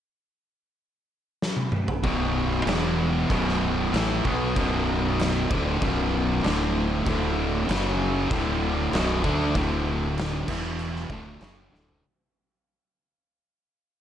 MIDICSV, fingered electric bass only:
0, 0, Header, 1, 2, 480
1, 0, Start_track
1, 0, Tempo, 630252
1, 1551, Time_signature, 4, 2, 24, 8
1, 5385, Tempo, 621118
1, 10741, End_track
2, 0, Start_track
2, 0, Title_t, "Fingered electric bass"
2, 0, Program_c, 0, 33
2, 1552, Note_on_c, 0, 23, 99
2, 2002, Note_off_c, 0, 23, 0
2, 2019, Note_on_c, 0, 28, 92
2, 2476, Note_off_c, 0, 28, 0
2, 2512, Note_on_c, 0, 23, 97
2, 2963, Note_off_c, 0, 23, 0
2, 2989, Note_on_c, 0, 33, 86
2, 3214, Note_off_c, 0, 33, 0
2, 3236, Note_on_c, 0, 35, 89
2, 3458, Note_off_c, 0, 35, 0
2, 3474, Note_on_c, 0, 23, 109
2, 4162, Note_off_c, 0, 23, 0
2, 4193, Note_on_c, 0, 26, 97
2, 4415, Note_off_c, 0, 26, 0
2, 4428, Note_on_c, 0, 23, 105
2, 4876, Note_off_c, 0, 23, 0
2, 4908, Note_on_c, 0, 26, 90
2, 5354, Note_off_c, 0, 26, 0
2, 5378, Note_on_c, 0, 26, 98
2, 5833, Note_off_c, 0, 26, 0
2, 5860, Note_on_c, 0, 30, 87
2, 6314, Note_off_c, 0, 30, 0
2, 6340, Note_on_c, 0, 26, 107
2, 6794, Note_off_c, 0, 26, 0
2, 6819, Note_on_c, 0, 23, 98
2, 7047, Note_off_c, 0, 23, 0
2, 7059, Note_on_c, 0, 38, 88
2, 7287, Note_off_c, 0, 38, 0
2, 7296, Note_on_c, 0, 26, 94
2, 7991, Note_off_c, 0, 26, 0
2, 8021, Note_on_c, 0, 28, 102
2, 8473, Note_off_c, 0, 28, 0
2, 8494, Note_on_c, 0, 26, 86
2, 8723, Note_off_c, 0, 26, 0
2, 8739, Note_on_c, 0, 30, 100
2, 8965, Note_off_c, 0, 30, 0
2, 8983, Note_on_c, 0, 26, 91
2, 9207, Note_off_c, 0, 26, 0
2, 10741, End_track
0, 0, End_of_file